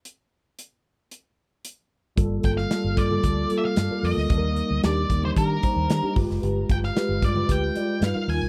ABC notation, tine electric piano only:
X:1
M:4/4
L:1/16
Q:1/4=113
K:Gm
V:1 name="Tine electric piano"
z16 | [G,B,FA]3 z [G,B,FA]3 [G,B,FA]3 [G,B,FA]3 [G,B,FB]3 | [G,B,EAB]3 z [G,DEG]3 [G,DEG]3 [G,DEc]3 [G,DEG] [_A,FG=B]2- | [_A,FG=B]3 z [A,FGB]3 [A,FGB]3 [A,FGd]2 [G,^DFB] [G,DF^A]3 |]